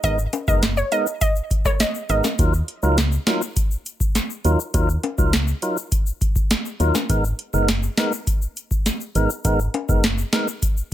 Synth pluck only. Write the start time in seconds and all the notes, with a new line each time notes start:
0.04 D#5
0.48 D#5
0.77 C#5
0.92 D#5
1.21 D#5
1.66 C#5
1.80 D#5
2.10 D#5